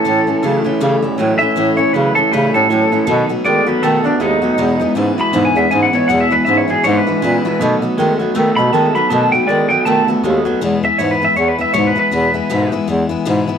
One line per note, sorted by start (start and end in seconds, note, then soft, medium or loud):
0.00 0.62 A4 medium
0.05 0.27 A2 medium
0.05 0.21 A2 medium
0.05 0.40 A2 medium
0.05 0.27 E3 medium
0.05 0.40 E3 medium
0.05 0.28 A3 medium
0.05 0.27 C#4 medium
0.05 0.26 E4 medium
0.27 0.34 A2 medium
0.27 0.42 A3 soft
0.27 0.43 C#4 medium
0.27 0.43 E4 medium
0.42 0.63 A2 medium
0.42 0.58 C#3 medium
0.42 0.65 E3 medium
0.42 0.63 F#3 loud
0.42 0.65 A3 medium
0.42 0.65 C#4 medium
0.42 0.63 E4 medium
0.64 0.79 A2 medium
0.64 0.71 C#3 medium
0.64 0.79 E3 medium
0.64 0.80 A3 medium
0.64 0.80 C#4 medium
0.64 0.80 E4 medium
0.80 1.15 A2 medium
0.80 1.03 A2 medium
0.80 0.96 C#3 loud
0.80 1.03 E3 medium
0.80 1.16 G3 medium
0.80 1.03 A3 loud
0.80 1.03 C#4 medium
0.80 1.01 E4 medium
1.02 1.09 C#3 medium
1.02 1.18 A3 medium
1.02 1.18 C#4 medium
1.02 1.18 E4 medium
1.18 1.34 A2 loud
1.18 1.38 A2 loud
1.18 1.40 E3 medium
1.18 1.38 F#3 medium
1.18 1.41 A3 medium
1.18 1.41 C#4 medium
1.18 1.39 E4 medium
1.39 1.55 A2 medium
1.39 1.47 A2 medium
1.39 1.55 E3 medium
1.39 1.56 C#4 medium
1.39 1.56 E4 medium
1.39 1.76 E5 loud
1.43 1.56 A3 soft
1.56 1.78 A2 medium
1.56 1.72 A2 medium
1.56 1.91 A2 medium
1.56 1.78 E3 medium
1.56 1.91 E3 medium
1.56 1.78 A3 medium
1.56 1.77 C#4 medium
1.56 1.76 E4 medium
1.77 1.84 A2 medium
1.77 1.93 A3 soft
1.77 1.94 C#4 medium
1.77 1.93 E4 medium
1.77 1.93 C#5 loud
1.93 2.14 A2 loud
1.93 2.10 C#3 loud
1.93 2.16 E3 medium
1.93 2.14 F#3 loud
1.93 2.16 A3 medium
1.93 2.16 C#4 medium
1.93 2.15 E4 medium
1.93 2.15 B4 medium
2.15 2.29 A2 medium
2.15 2.23 C#3 medium
2.15 2.30 E3 medium
2.15 2.32 A3 soft
2.15 2.32 C#4 medium
2.15 2.32 E4 medium
2.15 2.32 A4 loud
2.30 2.66 A2 medium
2.30 2.54 A2 medium
2.30 2.48 C#3 loud
2.30 2.55 E3 medium
2.30 2.66 G3 medium
2.30 2.55 A3 medium
2.30 2.54 C#4 medium
2.30 2.53 E4 medium
2.30 2.53 B4 medium
2.54 2.65 A2 medium
2.54 2.70 A3 soft
2.54 2.70 C#4 medium
2.54 2.70 E4 medium
2.54 3.27 A4 medium
2.70 2.89 A2 medium
2.70 2.85 A2 medium
2.70 2.92 E3 medium
2.70 2.89 F#3 medium
2.70 2.92 A3 medium
2.70 2.91 C#4 medium
2.70 2.91 E4 medium
2.92 3.06 A2 medium
2.92 2.99 A2 medium
2.92 3.06 E3 medium
2.92 3.06 A3 medium
2.92 3.07 C#4 medium
2.92 3.07 E4 medium
3.07 3.29 B2 medium
3.07 3.42 B2 medium
3.07 3.23 B2 loud
3.07 3.29 D#3 medium
3.07 3.42 F#3 medium
3.07 3.29 A3 medium
3.07 3.29 B3 medium
3.07 3.28 F#4 medium
3.29 3.36 B2 medium
3.29 3.44 A3 medium
3.29 3.45 B3 medium
3.29 3.45 F#4 medium
3.44 3.65 B2 medium
3.44 3.67 D#3 medium
3.44 3.60 D#3 medium
3.44 3.65 G#3 medium
3.44 3.67 A3 medium
3.44 3.67 B3 medium
3.44 3.65 F#4 medium
3.44 3.67 D5 loud
3.66 3.81 B2 medium
3.66 3.73 D#3 medium
3.66 3.81 F#3 medium
3.66 3.82 A3 soft
3.66 3.83 B3 soft
3.66 3.82 F#4 medium
3.66 3.82 B4 loud
3.82 4.17 B2 medium
3.82 4.05 B2 medium
3.82 3.98 D#3 loud
3.82 4.05 D#3 medium
3.82 4.17 A3 medium
3.82 4.05 A3 medium
3.82 4.04 B3 medium
3.82 4.03 F#4 medium
3.82 4.04 A4 medium
4.04 4.11 D#3 medium
4.04 4.19 A3 soft
4.04 4.20 B3 medium
4.04 4.21 D4 medium
4.04 4.20 F#4 medium
4.20 4.36 D#2 medium
4.20 4.40 B2 medium
4.20 4.42 D#3 medium
4.20 4.40 G#3 medium
4.20 4.42 A3 medium
4.20 4.42 B3 medium
4.20 4.94 D#4 loud
4.20 4.41 F#4 medium
4.42 4.49 D#2 medium
4.42 4.56 B2 medium
4.42 4.57 F#3 medium
4.42 4.58 A3 soft
4.42 4.58 B3 soft
4.42 4.58 F#4 medium
4.58 4.73 E2 medium
4.58 4.80 E2 medium
4.58 4.93 E2 medium
4.58 4.80 B2 medium
4.58 4.93 B2 medium
4.58 4.80 E3 medium
4.58 4.80 G#3 medium
4.58 4.80 B3 medium
4.58 4.78 E4 medium
4.80 4.86 E2 medium
4.80 4.94 E3 medium
4.80 4.95 G#3 medium
4.80 4.95 B3 medium
4.80 4.96 E4 medium
4.95 5.16 E2 medium
4.95 5.11 G#2 medium
4.95 5.16 C#3 loud
4.95 5.18 E3 medium
4.95 5.18 G#3 medium
4.95 5.18 B3 medium
4.95 5.17 E4 medium
5.17 5.31 E2 medium
5.17 5.32 B2 medium
5.17 5.32 E3 soft
5.17 5.33 G#3 soft
5.17 5.33 B3 soft
5.17 5.33 E4 medium
5.17 5.45 B5 loud
5.33 5.68 E2 medium
5.33 5.55 E2 medium
5.33 5.49 G#2 medium
5.33 5.55 B2 medium
5.33 5.68 D3 medium
5.33 5.56 E3 medium
5.33 5.56 G#3 medium
5.33 5.55 B3 medium
5.33 5.54 E4 medium
5.45 5.58 G#5 medium
5.56 5.67 E2 medium
5.56 5.70 E3 soft
5.56 5.70 G#3 soft
5.56 5.71 B3 medium
5.56 5.71 E4 medium
5.56 5.70 E5 medium
5.71 5.91 E2 medium
5.71 5.87 G#2 medium
5.71 5.91 C#3 medium
5.71 5.93 E3 medium
5.71 5.93 G#3 medium
5.71 5.93 B3 medium
5.71 5.92 E4 medium
5.71 5.82 G#5 medium
5.83 5.95 F#5 medium
5.93 6.07 E2 medium
5.93 6.01 G#2 medium
5.93 6.08 B2 loud
5.93 6.08 E3 soft
5.93 6.09 G#3 soft
5.93 6.09 B3 medium
5.93 6.09 E4 medium
5.93 6.08 C#5 loud
6.08 6.31 E2 medium
6.08 6.44 E2 medium
6.08 6.25 E2 medium
6.08 6.31 B2 medium
6.08 6.44 B2 medium
6.08 6.31 E3 medium
6.08 6.31 G#3 medium
6.08 6.30 B3 medium
6.08 6.29 E4 medium
6.08 6.20 F#5 medium
6.21 6.33 E5 medium
6.30 6.38 E2 medium
6.30 6.45 E3 soft
6.30 6.46 G#3 soft
6.30 6.46 B3 medium
6.30 6.46 E4 medium
6.30 6.45 B4 loud
6.45 6.67 E2 medium
6.45 6.63 G#2 medium
6.45 6.67 C#3 loud
6.45 6.69 E3 medium
6.45 6.68 G#3 medium
6.45 6.67 B3 medium
6.45 6.66 E4 medium
6.45 6.57 E5 loud
6.57 6.71 C#5 medium
6.68 6.83 E2 medium
6.68 6.75 G#2 medium
6.68 6.83 B2 medium
6.68 6.83 E3 soft
6.68 6.83 G#3 soft
6.68 6.84 B3 soft
6.68 6.84 E4 medium
6.68 6.83 G#4 loud
6.84 7.06 E2 medium
6.84 7.19 E2 medium
6.84 7.00 G#2 loud
6.84 7.06 B2 medium
6.84 7.20 D3 loud
6.84 7.06 E3 medium
6.84 7.07 G#3 medium
6.84 7.06 B3 medium
6.84 7.05 E4 medium
6.84 6.97 C#5 loud
6.97 7.70 B4 medium
7.07 7.13 G#2 medium
7.07 7.21 E3 soft
7.07 7.21 G#3 medium
7.07 7.22 B3 medium
7.07 7.22 E4 medium
7.22 7.42 E2 medium
7.22 7.38 A#2 medium
7.22 7.42 C#3 loud
7.22 7.44 E3 medium
7.22 7.44 G#3 medium
7.22 7.44 B3 medium
7.22 7.44 E4 medium
7.44 7.59 E2 medium
7.44 7.51 A#2 medium
7.44 7.58 B2 medium
7.44 7.60 E3 soft
7.44 7.61 G#3 soft
7.44 7.61 B3 medium
7.44 7.60 E4 medium
7.60 7.94 B2 medium
7.60 7.75 B2 loud
7.60 7.82 B2 medium
7.60 7.82 D#3 medium
7.60 7.95 F#3 medium
7.60 7.83 A3 medium
7.60 7.82 B3 medium
7.60 7.81 F#4 loud
7.81 7.88 B2 medium
7.81 7.98 A3 medium
7.81 7.98 B3 medium
7.81 7.98 F#4 medium
7.97 8.17 B2 medium
7.97 8.13 D#3 loud
7.97 8.20 D#3 medium
7.97 8.18 G#3 loud
7.97 8.20 A3 medium
7.97 8.19 B3 medium
7.97 8.18 F#4 medium
8.19 8.34 B2 medium
8.19 8.26 D#3 medium
8.19 8.34 F#3 medium
8.19 8.34 A3 soft
8.19 8.35 B3 soft
8.19 8.35 F#4 medium
8.35 8.57 B2 medium
8.35 8.70 B2 medium
8.35 8.57 D#3 medium
8.35 8.51 D#3 loud
8.35 8.58 A3 medium
8.35 8.70 A3 loud
8.35 8.58 B3 medium
8.35 8.57 F#4 medium
8.57 8.68 B2 medium
8.57 8.73 A3 soft
8.57 8.73 B3 medium
8.57 8.73 F#4 medium
8.57 8.72 B5 medium
8.72 8.93 B2 medium
8.72 8.88 D#3 medium
8.72 8.95 D#3 medium
8.72 8.93 G#3 medium
8.72 8.96 A3 medium
8.72 8.95 B3 medium
8.72 8.94 F#4 medium
8.72 8.94 A5 medium
8.95 9.08 B2 medium
8.95 9.02 D#3 medium
8.95 9.09 F#3 medium
8.95 9.10 A3 soft
8.95 9.11 B3 medium
8.95 9.11 F#4 medium
8.95 9.10 B5 medium
9.10 9.45 B2 medium
9.10 9.33 B2 medium
9.10 9.26 B2 medium
9.10 9.33 D#3 medium
9.10 9.45 F#3 loud
9.10 9.33 A3 medium
9.10 9.33 B3 medium
9.10 9.32 F#4 medium
9.10 9.32 A5 loud
9.32 9.39 B2 medium
9.32 9.48 A3 soft
9.32 9.48 B3 medium
9.32 9.49 F#4 medium
9.32 9.48 G5 loud
9.47 9.67 B2 medium
9.47 9.71 D#3 medium
9.47 9.64 D#3 medium
9.47 9.68 G#3 medium
9.47 9.71 A3 medium
9.47 9.70 B3 medium
9.47 9.69 F#4 medium
9.47 9.69 D5 loud
9.69 9.84 B2 medium
9.69 9.77 D#3 medium
9.69 9.84 F#3 medium
9.69 9.86 A3 soft
9.69 9.86 B3 soft
9.69 9.86 F#4 medium
9.69 9.85 G5 loud
9.85 10.08 B2 medium
9.85 10.21 B2 medium
9.85 10.02 D#3 loud
9.85 10.09 D#3 medium
9.85 10.09 A3 medium
9.85 10.21 A3 medium
9.85 10.09 B3 medium
9.85 10.07 F#4 medium
9.85 10.07 A5 loud
10.08 10.14 D#3 medium
10.08 10.23 A3 soft
10.08 10.24 B3 medium
10.08 10.24 F#4 medium
10.23 10.39 D#2 loud
10.23 10.44 B2 medium
10.23 10.46 D#3 medium
10.23 10.44 G#3 loud
10.23 10.45 A3 medium
10.23 10.45 B3 medium
10.23 10.44 F#4 medium
10.45 10.52 D#2 medium
10.45 10.60 B2 medium
10.45 10.60 F#3 medium
10.45 10.62 A3 medium
10.45 10.61 B3 medium
10.45 10.61 F#4 medium
10.61 10.83 E2 medium
10.61 10.78 E2 medium
10.61 10.84 B2 medium
10.61 10.84 E3 medium
10.61 10.83 G#3 loud
10.61 10.82 B3 medium
10.61 10.82 E4 medium
10.83 10.90 E2 medium
10.83 10.98 E3 soft
10.83 10.98 G#3 medium
10.83 10.99 B3 soft
10.83 10.99 E4 medium
10.83 10.98 E5 medium
10.98 11.21 E2 medium
10.98 11.15 G#2 medium
10.98 11.21 B2 medium
10.98 11.21 E3 medium
10.98 11.22 G#3 medium
10.98 11.21 B3 medium
10.98 11.20 E4 medium
10.98 11.11 C#5 loud
11.11 11.24 B4 medium
11.21 11.28 G#2 medium
11.21 11.35 E3 soft
11.21 11.36 G#3 soft
11.21 11.36 B3 soft
11.21 11.37 E4 medium
11.21 11.36 E5 medium
11.36 11.53 E2 medium
11.36 11.59 E3 medium
11.36 11.59 G#3 medium
11.36 11.58 B3 medium
11.36 11.57 E4 medium
11.36 11.48 C#5 loud
11.48 11.61 B4 medium
11.58 11.65 E2 medium
11.58 11.73 E3 soft
11.58 11.73 G#3 medium
11.58 11.73 B3 medium
11.58 11.74 E4 medium
11.58 11.73 E5 medium
11.73 11.96 E2 medium
11.73 11.91 G#2 medium
11.73 11.96 B2 medium
11.73 11.97 E3 medium
11.73 11.96 G#3 medium
11.73 11.95 B3 medium
11.73 11.94 E4 medium
11.73 11.86 C#5 medium
11.87 11.98 B4 medium
11.96 12.11 E3 medium
11.96 12.11 G#3 soft
11.96 12.12 B3 medium
11.96 12.12 E4 medium
11.96 12.73 B4 loud
12.11 12.34 E2 medium
12.11 12.29 E2 medium
12.11 12.34 B2 medium
12.11 12.34 E3 medium
12.11 12.34 G#3 medium
12.11 12.33 B3 medium
12.11 12.33 E4 medium
12.34 12.41 E2 medium
12.34 12.49 E3 soft
12.34 12.49 G#3 medium
12.34 12.50 B3 medium
12.34 12.50 E4 medium
12.50 12.72 E2 medium
12.50 12.67 G#2 medium
12.50 12.72 B2 medium
12.50 12.72 E3 medium
12.50 12.72 G#3 medium
12.50 12.72 B3 medium
12.50 12.71 E4 loud
12.72 12.79 G#2 medium
12.72 12.86 E3 soft
12.72 12.87 G#3 medium
12.72 12.88 B3 medium
12.72 12.88 E4 medium
12.88 13.04 E2 medium
12.88 13.10 E3 medium
12.88 13.10 G#3 medium
12.88 13.08 B3 medium
12.88 13.08 E4 medium
13.09 13.16 E2 medium
13.09 13.25 E3 medium
13.09 13.25 G#3 medium
13.09 13.25 B3 medium
13.09 13.25 E4 medium
13.25 13.48 E2 medium
13.25 13.42 G#2 loud
13.25 13.48 B2 medium
13.25 13.48 E3 medium
13.25 13.48 G#3 loud
13.25 13.47 B3 loud
13.25 13.46 E4 loud
13.47 13.54 G#2 medium
13.47 13.58 E3 medium
13.47 13.58 G#3 medium
13.47 13.58 B3 medium
13.47 13.58 E4 medium